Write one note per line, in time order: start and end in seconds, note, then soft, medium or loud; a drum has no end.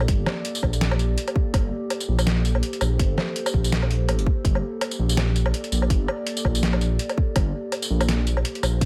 0.00 8.85 A#3 medium
0.00 8.85 G4 medium
0.00 8.85 A4 medium
0.00 2.01 D5 medium
0.00 low woodblock medium
0.08 0.25 G1 medium
0.08 kick loud
0.08 closed hi-hat medium
0.26 snare medium
0.26 low woodblock medium
0.45 closed hi-hat medium
0.55 tambourine medium
0.63 1.17 A#1 medium
0.63 kick medium
0.63 low woodblock medium
0.73 tambourine medium
0.81 snare loud
0.81 closed hi-hat medium
0.91 low woodblock medium
0.99 closed hi-hat soft
0.99 tambourine soft
1.18 closed hi-hat medium
1.28 closed hi-hat soft
1.28 low woodblock medium
1.36 kick loud
1.54 1.71 G1 loud
1.54 kick loud
1.54 closed hi-hat medium
1.54 low woodblock medium
1.90 closed hi-hat medium
1.90 low woodblock soft
1.99 4.92 C5 medium
1.99 tambourine medium
2.08 2.62 A#1 medium
2.19 tambourine medium
2.19 low woodblock medium
2.27 snare loud
2.27 closed hi-hat medium
2.45 closed hi-hat soft
2.45 tambourine soft
2.55 low woodblock medium
2.63 closed hi-hat medium
2.73 closed hi-hat soft
2.81 2.98 A#1 medium
2.81 tambourine medium
2.81 low woodblock medium
2.99 3.16 G1 loud
2.99 kick loud
2.99 closed hi-hat medium
3.18 snare medium
3.18 low woodblock soft
3.36 closed hi-hat medium
3.46 tambourine medium
3.46 low woodblock medium
3.54 4.07 A#1 medium
3.54 kick medium
3.64 tambourine medium
3.72 snare loud
3.72 closed hi-hat medium
3.82 low woodblock medium
3.91 closed hi-hat soft
3.91 tambourine soft
4.08 4.20 A1 medium
4.08 closed hi-hat medium
4.08 low woodblock medium
4.18 4.26 F1 loud
4.18 closed hi-hat soft
4.26 kick loud
4.45 4.62 G1 medium
4.45 kick loud
4.45 closed hi-hat medium
4.55 low woodblock medium
4.81 closed hi-hat medium
4.81 low woodblock medium
4.90 7.83 D5 medium
4.90 tambourine medium
4.99 5.53 A#1 medium
5.09 tambourine medium
5.17 snare loud
5.17 closed hi-hat medium
5.17 low woodblock soft
5.36 closed hi-hat soft
5.36 tambourine soft
5.46 low woodblock medium
5.54 closed hi-hat medium
5.64 closed hi-hat soft
5.72 5.89 A#1 medium
5.72 tambourine medium
5.82 low woodblock soft
5.90 6.07 G1 medium
5.90 kick loud
5.90 closed hi-hat medium
6.08 low woodblock medium
6.27 closed hi-hat medium
6.37 tambourine medium
6.45 6.98 A#1 medium
6.45 kick medium
6.45 low woodblock medium
6.55 tambourine medium
6.63 snare loud
6.63 closed hi-hat medium
6.73 low woodblock medium
6.81 closed hi-hat soft
6.81 tambourine soft
6.99 closed hi-hat medium
7.09 closed hi-hat soft
7.09 low woodblock soft
7.18 kick loud
7.36 7.53 G1 medium
7.36 kick loud
7.36 closed hi-hat medium
7.36 low woodblock medium
7.72 closed hi-hat medium
7.72 low woodblock medium
7.81 8.85 C5 medium
7.81 tambourine medium
7.90 8.44 A#1 medium
8.01 tambourine medium
8.01 low woodblock medium
8.09 snare loud
8.09 closed hi-hat medium
8.27 closed hi-hat soft
8.27 tambourine soft
8.37 low woodblock medium
8.45 closed hi-hat medium
8.55 closed hi-hat soft
8.63 8.80 A#1 medium
8.63 tambourine medium
8.63 low woodblock medium
8.81 8.85 G1 medium
8.81 kick loud
8.81 closed hi-hat medium